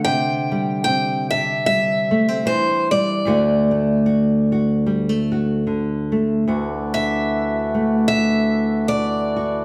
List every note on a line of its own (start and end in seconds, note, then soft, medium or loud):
0.00 2.45 D3 medium
0.00 1.30 D4 medium
0.04 2.46 C3 medium
0.04 0.83 G5 medium
0.51 1.65 G3 medium
0.84 2.10 C4 medium
0.84 1.26 G5 medium
1.30 3.27 D4 medium
1.30 1.65 E5 medium
1.66 2.90 G3 medium
1.66 2.46 E5 medium
2.11 2.28 A3 medium
2.28 3.26 C4 soft
2.45 3.22 E3 medium
2.45 2.91 C5 medium
2.91 3.26 G3 medium
2.91 6.09 D5 medium
3.25 6.46 D2 medium
3.25 5.65 D3 medium
3.25 3.70 A3 medium
3.25 4.05 F#4 medium
3.71 4.86 A3 soft
4.06 4.51 F#4 medium
4.52 5.30 F#4 medium
4.86 5.09 G3 medium
5.09 6.11 A3 soft
5.32 6.43 F#4 medium
5.67 9.65 D3 medium
6.12 6.43 A3 soft
6.47 9.65 D2 medium
6.47 9.65 E3 medium
6.47 9.65 D4 medium
6.47 9.65 F#4 medium
6.47 9.35 F#4 medium
6.94 8.07 E5 medium
7.74 9.65 A3 soft
8.08 8.88 E5 medium
8.88 9.65 D5 medium
9.36 9.65 F#4 soft